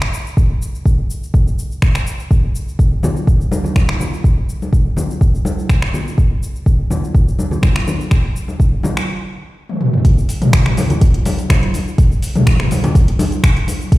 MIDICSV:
0, 0, Header, 1, 2, 480
1, 0, Start_track
1, 0, Tempo, 483871
1, 368, Time_signature, 4, 2, 24, 8
1, 13868, End_track
2, 0, Start_track
2, 0, Title_t, "Drums"
2, 17, Note_on_c, 9, 26, 91
2, 116, Note_off_c, 9, 26, 0
2, 137, Note_on_c, 9, 82, 89
2, 236, Note_off_c, 9, 82, 0
2, 264, Note_on_c, 9, 82, 39
2, 363, Note_off_c, 9, 82, 0
2, 368, Note_on_c, 9, 36, 113
2, 375, Note_on_c, 9, 82, 50
2, 467, Note_off_c, 9, 36, 0
2, 474, Note_off_c, 9, 82, 0
2, 616, Note_on_c, 9, 82, 88
2, 715, Note_off_c, 9, 82, 0
2, 744, Note_on_c, 9, 82, 39
2, 844, Note_off_c, 9, 82, 0
2, 848, Note_on_c, 9, 36, 102
2, 856, Note_on_c, 9, 82, 52
2, 948, Note_off_c, 9, 36, 0
2, 955, Note_off_c, 9, 82, 0
2, 1095, Note_on_c, 9, 82, 92
2, 1194, Note_off_c, 9, 82, 0
2, 1224, Note_on_c, 9, 82, 39
2, 1324, Note_off_c, 9, 82, 0
2, 1329, Note_on_c, 9, 36, 117
2, 1335, Note_on_c, 9, 82, 54
2, 1428, Note_off_c, 9, 36, 0
2, 1434, Note_off_c, 9, 82, 0
2, 1463, Note_on_c, 9, 82, 36
2, 1562, Note_off_c, 9, 82, 0
2, 1576, Note_on_c, 9, 82, 89
2, 1675, Note_off_c, 9, 82, 0
2, 1702, Note_on_c, 9, 82, 38
2, 1801, Note_off_c, 9, 82, 0
2, 1807, Note_on_c, 9, 26, 78
2, 1809, Note_on_c, 9, 36, 99
2, 1814, Note_on_c, 9, 82, 52
2, 1906, Note_off_c, 9, 26, 0
2, 1908, Note_off_c, 9, 36, 0
2, 1913, Note_off_c, 9, 82, 0
2, 1936, Note_on_c, 9, 26, 85
2, 1943, Note_on_c, 9, 82, 35
2, 2035, Note_off_c, 9, 26, 0
2, 2042, Note_off_c, 9, 82, 0
2, 2053, Note_on_c, 9, 82, 91
2, 2152, Note_off_c, 9, 82, 0
2, 2180, Note_on_c, 9, 82, 38
2, 2279, Note_off_c, 9, 82, 0
2, 2289, Note_on_c, 9, 36, 109
2, 2293, Note_on_c, 9, 82, 50
2, 2388, Note_off_c, 9, 36, 0
2, 2392, Note_off_c, 9, 82, 0
2, 2533, Note_on_c, 9, 82, 83
2, 2633, Note_off_c, 9, 82, 0
2, 2663, Note_on_c, 9, 82, 39
2, 2762, Note_off_c, 9, 82, 0
2, 2768, Note_on_c, 9, 36, 99
2, 2774, Note_on_c, 9, 82, 51
2, 2868, Note_off_c, 9, 36, 0
2, 2874, Note_off_c, 9, 82, 0
2, 3006, Note_on_c, 9, 63, 82
2, 3014, Note_on_c, 9, 82, 87
2, 3016, Note_on_c, 9, 64, 100
2, 3105, Note_off_c, 9, 63, 0
2, 3113, Note_off_c, 9, 82, 0
2, 3115, Note_off_c, 9, 64, 0
2, 3142, Note_on_c, 9, 82, 39
2, 3241, Note_off_c, 9, 82, 0
2, 3248, Note_on_c, 9, 36, 113
2, 3257, Note_on_c, 9, 82, 51
2, 3347, Note_off_c, 9, 36, 0
2, 3357, Note_off_c, 9, 82, 0
2, 3384, Note_on_c, 9, 82, 35
2, 3483, Note_off_c, 9, 82, 0
2, 3487, Note_on_c, 9, 63, 92
2, 3497, Note_on_c, 9, 82, 86
2, 3586, Note_off_c, 9, 63, 0
2, 3596, Note_off_c, 9, 82, 0
2, 3614, Note_on_c, 9, 64, 80
2, 3625, Note_on_c, 9, 82, 38
2, 3713, Note_off_c, 9, 64, 0
2, 3724, Note_off_c, 9, 82, 0
2, 3728, Note_on_c, 9, 36, 97
2, 3729, Note_on_c, 9, 26, 76
2, 3732, Note_on_c, 9, 63, 87
2, 3736, Note_on_c, 9, 82, 50
2, 3827, Note_off_c, 9, 36, 0
2, 3828, Note_off_c, 9, 26, 0
2, 3831, Note_off_c, 9, 63, 0
2, 3835, Note_off_c, 9, 82, 0
2, 3857, Note_on_c, 9, 26, 81
2, 3957, Note_off_c, 9, 26, 0
2, 3967, Note_on_c, 9, 64, 75
2, 3975, Note_on_c, 9, 63, 59
2, 3975, Note_on_c, 9, 82, 87
2, 4067, Note_off_c, 9, 64, 0
2, 4074, Note_off_c, 9, 63, 0
2, 4075, Note_off_c, 9, 82, 0
2, 4105, Note_on_c, 9, 82, 38
2, 4204, Note_off_c, 9, 82, 0
2, 4208, Note_on_c, 9, 36, 106
2, 4218, Note_on_c, 9, 82, 47
2, 4307, Note_off_c, 9, 36, 0
2, 4317, Note_off_c, 9, 82, 0
2, 4457, Note_on_c, 9, 82, 82
2, 4556, Note_off_c, 9, 82, 0
2, 4585, Note_on_c, 9, 63, 58
2, 4587, Note_on_c, 9, 82, 35
2, 4684, Note_off_c, 9, 63, 0
2, 4686, Note_off_c, 9, 82, 0
2, 4689, Note_on_c, 9, 36, 94
2, 4698, Note_on_c, 9, 82, 50
2, 4788, Note_off_c, 9, 36, 0
2, 4797, Note_off_c, 9, 82, 0
2, 4926, Note_on_c, 9, 64, 96
2, 4929, Note_on_c, 9, 63, 75
2, 4938, Note_on_c, 9, 82, 87
2, 5025, Note_off_c, 9, 64, 0
2, 5028, Note_off_c, 9, 63, 0
2, 5037, Note_off_c, 9, 82, 0
2, 5065, Note_on_c, 9, 82, 37
2, 5165, Note_off_c, 9, 82, 0
2, 5169, Note_on_c, 9, 36, 108
2, 5177, Note_on_c, 9, 82, 49
2, 5268, Note_off_c, 9, 36, 0
2, 5276, Note_off_c, 9, 82, 0
2, 5306, Note_on_c, 9, 82, 34
2, 5406, Note_off_c, 9, 82, 0
2, 5406, Note_on_c, 9, 63, 87
2, 5419, Note_on_c, 9, 82, 82
2, 5505, Note_off_c, 9, 63, 0
2, 5518, Note_off_c, 9, 82, 0
2, 5545, Note_on_c, 9, 82, 35
2, 5645, Note_off_c, 9, 82, 0
2, 5649, Note_on_c, 9, 36, 93
2, 5650, Note_on_c, 9, 26, 77
2, 5656, Note_on_c, 9, 82, 50
2, 5748, Note_off_c, 9, 36, 0
2, 5749, Note_off_c, 9, 26, 0
2, 5756, Note_off_c, 9, 82, 0
2, 5777, Note_on_c, 9, 26, 84
2, 5876, Note_off_c, 9, 26, 0
2, 5884, Note_on_c, 9, 63, 55
2, 5893, Note_on_c, 9, 64, 81
2, 5897, Note_on_c, 9, 82, 83
2, 5983, Note_off_c, 9, 63, 0
2, 5992, Note_off_c, 9, 64, 0
2, 5996, Note_off_c, 9, 82, 0
2, 6028, Note_on_c, 9, 82, 37
2, 6127, Note_off_c, 9, 82, 0
2, 6129, Note_on_c, 9, 36, 109
2, 6138, Note_on_c, 9, 82, 49
2, 6228, Note_off_c, 9, 36, 0
2, 6237, Note_off_c, 9, 82, 0
2, 6377, Note_on_c, 9, 82, 80
2, 6476, Note_off_c, 9, 82, 0
2, 6505, Note_on_c, 9, 82, 35
2, 6604, Note_off_c, 9, 82, 0
2, 6609, Note_on_c, 9, 36, 96
2, 6616, Note_on_c, 9, 82, 48
2, 6708, Note_off_c, 9, 36, 0
2, 6715, Note_off_c, 9, 82, 0
2, 6849, Note_on_c, 9, 64, 92
2, 6850, Note_on_c, 9, 63, 78
2, 6857, Note_on_c, 9, 82, 86
2, 6948, Note_off_c, 9, 64, 0
2, 6949, Note_off_c, 9, 63, 0
2, 6956, Note_off_c, 9, 82, 0
2, 6985, Note_on_c, 9, 82, 36
2, 7084, Note_off_c, 9, 82, 0
2, 7089, Note_on_c, 9, 36, 109
2, 7096, Note_on_c, 9, 82, 49
2, 7188, Note_off_c, 9, 36, 0
2, 7196, Note_off_c, 9, 82, 0
2, 7225, Note_on_c, 9, 82, 33
2, 7324, Note_off_c, 9, 82, 0
2, 7328, Note_on_c, 9, 63, 81
2, 7336, Note_on_c, 9, 82, 84
2, 7427, Note_off_c, 9, 63, 0
2, 7436, Note_off_c, 9, 82, 0
2, 7453, Note_on_c, 9, 64, 78
2, 7463, Note_on_c, 9, 82, 36
2, 7552, Note_off_c, 9, 64, 0
2, 7563, Note_off_c, 9, 82, 0
2, 7563, Note_on_c, 9, 63, 82
2, 7568, Note_on_c, 9, 26, 79
2, 7569, Note_on_c, 9, 36, 93
2, 7575, Note_on_c, 9, 82, 48
2, 7663, Note_off_c, 9, 63, 0
2, 7668, Note_off_c, 9, 26, 0
2, 7668, Note_off_c, 9, 36, 0
2, 7674, Note_off_c, 9, 82, 0
2, 7696, Note_on_c, 9, 26, 88
2, 7795, Note_off_c, 9, 26, 0
2, 7810, Note_on_c, 9, 63, 61
2, 7813, Note_on_c, 9, 64, 75
2, 7814, Note_on_c, 9, 82, 83
2, 7909, Note_off_c, 9, 63, 0
2, 7912, Note_off_c, 9, 64, 0
2, 7914, Note_off_c, 9, 82, 0
2, 7944, Note_on_c, 9, 82, 37
2, 8043, Note_off_c, 9, 82, 0
2, 8047, Note_on_c, 9, 26, 79
2, 8048, Note_on_c, 9, 36, 108
2, 8054, Note_on_c, 9, 82, 48
2, 8146, Note_off_c, 9, 26, 0
2, 8147, Note_off_c, 9, 36, 0
2, 8153, Note_off_c, 9, 82, 0
2, 8295, Note_on_c, 9, 82, 82
2, 8395, Note_off_c, 9, 82, 0
2, 8413, Note_on_c, 9, 63, 60
2, 8423, Note_on_c, 9, 82, 37
2, 8512, Note_off_c, 9, 63, 0
2, 8522, Note_off_c, 9, 82, 0
2, 8528, Note_on_c, 9, 36, 98
2, 8537, Note_on_c, 9, 82, 50
2, 8628, Note_off_c, 9, 36, 0
2, 8636, Note_off_c, 9, 82, 0
2, 8763, Note_on_c, 9, 63, 83
2, 8772, Note_on_c, 9, 64, 106
2, 8776, Note_on_c, 9, 82, 84
2, 8862, Note_off_c, 9, 63, 0
2, 8871, Note_off_c, 9, 64, 0
2, 8875, Note_off_c, 9, 82, 0
2, 8899, Note_on_c, 9, 26, 84
2, 8905, Note_on_c, 9, 82, 38
2, 8998, Note_off_c, 9, 26, 0
2, 9005, Note_off_c, 9, 82, 0
2, 9617, Note_on_c, 9, 48, 50
2, 9716, Note_off_c, 9, 48, 0
2, 9728, Note_on_c, 9, 47, 75
2, 9828, Note_off_c, 9, 47, 0
2, 9856, Note_on_c, 9, 45, 75
2, 9955, Note_off_c, 9, 45, 0
2, 9967, Note_on_c, 9, 36, 120
2, 9968, Note_on_c, 9, 42, 66
2, 9974, Note_on_c, 9, 82, 53
2, 10066, Note_off_c, 9, 36, 0
2, 10067, Note_off_c, 9, 42, 0
2, 10074, Note_off_c, 9, 82, 0
2, 10102, Note_on_c, 9, 82, 36
2, 10201, Note_off_c, 9, 82, 0
2, 10207, Note_on_c, 9, 46, 94
2, 10213, Note_on_c, 9, 82, 92
2, 10306, Note_off_c, 9, 46, 0
2, 10313, Note_off_c, 9, 82, 0
2, 10334, Note_on_c, 9, 42, 32
2, 10334, Note_on_c, 9, 47, 90
2, 10341, Note_on_c, 9, 82, 40
2, 10433, Note_off_c, 9, 42, 0
2, 10433, Note_off_c, 9, 47, 0
2, 10440, Note_off_c, 9, 82, 0
2, 10447, Note_on_c, 9, 26, 116
2, 10447, Note_on_c, 9, 36, 105
2, 10447, Note_on_c, 9, 42, 70
2, 10454, Note_on_c, 9, 82, 55
2, 10546, Note_off_c, 9, 26, 0
2, 10546, Note_off_c, 9, 36, 0
2, 10546, Note_off_c, 9, 42, 0
2, 10553, Note_off_c, 9, 82, 0
2, 10574, Note_on_c, 9, 26, 67
2, 10574, Note_on_c, 9, 47, 78
2, 10673, Note_off_c, 9, 26, 0
2, 10673, Note_off_c, 9, 47, 0
2, 10686, Note_on_c, 9, 46, 83
2, 10690, Note_on_c, 9, 63, 93
2, 10693, Note_on_c, 9, 82, 95
2, 10786, Note_off_c, 9, 46, 0
2, 10789, Note_off_c, 9, 63, 0
2, 10792, Note_off_c, 9, 82, 0
2, 10814, Note_on_c, 9, 42, 47
2, 10815, Note_on_c, 9, 64, 109
2, 10821, Note_on_c, 9, 82, 41
2, 10914, Note_off_c, 9, 42, 0
2, 10914, Note_off_c, 9, 64, 0
2, 10920, Note_off_c, 9, 82, 0
2, 10926, Note_on_c, 9, 36, 127
2, 10926, Note_on_c, 9, 42, 70
2, 10932, Note_on_c, 9, 82, 55
2, 11025, Note_off_c, 9, 36, 0
2, 11025, Note_off_c, 9, 42, 0
2, 11032, Note_off_c, 9, 82, 0
2, 11053, Note_on_c, 9, 42, 46
2, 11153, Note_off_c, 9, 42, 0
2, 11165, Note_on_c, 9, 46, 98
2, 11166, Note_on_c, 9, 63, 93
2, 11172, Note_on_c, 9, 82, 95
2, 11264, Note_off_c, 9, 46, 0
2, 11265, Note_off_c, 9, 63, 0
2, 11271, Note_off_c, 9, 82, 0
2, 11294, Note_on_c, 9, 42, 32
2, 11301, Note_on_c, 9, 82, 41
2, 11393, Note_off_c, 9, 42, 0
2, 11400, Note_off_c, 9, 82, 0
2, 11406, Note_on_c, 9, 36, 103
2, 11406, Note_on_c, 9, 63, 96
2, 11409, Note_on_c, 9, 26, 113
2, 11409, Note_on_c, 9, 42, 70
2, 11415, Note_on_c, 9, 64, 89
2, 11415, Note_on_c, 9, 82, 53
2, 11505, Note_off_c, 9, 36, 0
2, 11506, Note_off_c, 9, 63, 0
2, 11508, Note_off_c, 9, 26, 0
2, 11508, Note_off_c, 9, 42, 0
2, 11514, Note_off_c, 9, 64, 0
2, 11515, Note_off_c, 9, 82, 0
2, 11536, Note_on_c, 9, 42, 32
2, 11635, Note_off_c, 9, 42, 0
2, 11646, Note_on_c, 9, 46, 83
2, 11653, Note_on_c, 9, 82, 95
2, 11655, Note_on_c, 9, 63, 64
2, 11745, Note_off_c, 9, 46, 0
2, 11752, Note_off_c, 9, 82, 0
2, 11755, Note_off_c, 9, 63, 0
2, 11783, Note_on_c, 9, 82, 41
2, 11882, Note_off_c, 9, 82, 0
2, 11887, Note_on_c, 9, 36, 125
2, 11887, Note_on_c, 9, 42, 67
2, 11894, Note_on_c, 9, 82, 56
2, 11986, Note_off_c, 9, 36, 0
2, 11987, Note_off_c, 9, 42, 0
2, 11993, Note_off_c, 9, 82, 0
2, 12022, Note_on_c, 9, 82, 38
2, 12121, Note_off_c, 9, 82, 0
2, 12127, Note_on_c, 9, 46, 89
2, 12133, Note_on_c, 9, 82, 96
2, 12226, Note_off_c, 9, 46, 0
2, 12233, Note_off_c, 9, 82, 0
2, 12257, Note_on_c, 9, 42, 31
2, 12257, Note_on_c, 9, 47, 92
2, 12263, Note_on_c, 9, 82, 43
2, 12267, Note_on_c, 9, 63, 70
2, 12356, Note_off_c, 9, 42, 0
2, 12356, Note_off_c, 9, 47, 0
2, 12363, Note_off_c, 9, 82, 0
2, 12366, Note_off_c, 9, 63, 0
2, 12367, Note_on_c, 9, 36, 110
2, 12369, Note_on_c, 9, 26, 116
2, 12369, Note_on_c, 9, 42, 67
2, 12376, Note_on_c, 9, 82, 55
2, 12466, Note_off_c, 9, 36, 0
2, 12468, Note_off_c, 9, 26, 0
2, 12468, Note_off_c, 9, 42, 0
2, 12475, Note_off_c, 9, 82, 0
2, 12497, Note_on_c, 9, 26, 67
2, 12497, Note_on_c, 9, 47, 78
2, 12596, Note_off_c, 9, 26, 0
2, 12596, Note_off_c, 9, 47, 0
2, 12608, Note_on_c, 9, 46, 82
2, 12614, Note_on_c, 9, 82, 95
2, 12616, Note_on_c, 9, 63, 89
2, 12707, Note_off_c, 9, 46, 0
2, 12714, Note_off_c, 9, 82, 0
2, 12715, Note_off_c, 9, 63, 0
2, 12735, Note_on_c, 9, 42, 46
2, 12735, Note_on_c, 9, 64, 122
2, 12742, Note_on_c, 9, 82, 43
2, 12834, Note_off_c, 9, 42, 0
2, 12834, Note_off_c, 9, 64, 0
2, 12841, Note_off_c, 9, 82, 0
2, 12847, Note_on_c, 9, 36, 127
2, 12849, Note_on_c, 9, 42, 66
2, 12856, Note_on_c, 9, 82, 57
2, 12947, Note_off_c, 9, 36, 0
2, 12948, Note_off_c, 9, 42, 0
2, 12955, Note_off_c, 9, 82, 0
2, 12977, Note_on_c, 9, 42, 45
2, 13076, Note_off_c, 9, 42, 0
2, 13086, Note_on_c, 9, 63, 104
2, 13088, Note_on_c, 9, 46, 91
2, 13095, Note_on_c, 9, 82, 98
2, 13185, Note_off_c, 9, 63, 0
2, 13187, Note_off_c, 9, 46, 0
2, 13194, Note_off_c, 9, 82, 0
2, 13216, Note_on_c, 9, 42, 31
2, 13222, Note_on_c, 9, 82, 42
2, 13315, Note_off_c, 9, 42, 0
2, 13322, Note_off_c, 9, 82, 0
2, 13328, Note_on_c, 9, 36, 107
2, 13329, Note_on_c, 9, 26, 118
2, 13329, Note_on_c, 9, 42, 68
2, 13336, Note_on_c, 9, 82, 56
2, 13427, Note_off_c, 9, 36, 0
2, 13429, Note_off_c, 9, 26, 0
2, 13429, Note_off_c, 9, 42, 0
2, 13435, Note_off_c, 9, 82, 0
2, 13458, Note_on_c, 9, 42, 30
2, 13557, Note_off_c, 9, 42, 0
2, 13565, Note_on_c, 9, 63, 63
2, 13570, Note_on_c, 9, 46, 82
2, 13576, Note_on_c, 9, 82, 99
2, 13664, Note_off_c, 9, 63, 0
2, 13669, Note_off_c, 9, 46, 0
2, 13676, Note_off_c, 9, 82, 0
2, 13704, Note_on_c, 9, 82, 42
2, 13803, Note_off_c, 9, 82, 0
2, 13808, Note_on_c, 9, 36, 123
2, 13810, Note_on_c, 9, 42, 66
2, 13817, Note_on_c, 9, 82, 57
2, 13868, Note_off_c, 9, 36, 0
2, 13868, Note_off_c, 9, 42, 0
2, 13868, Note_off_c, 9, 82, 0
2, 13868, End_track
0, 0, End_of_file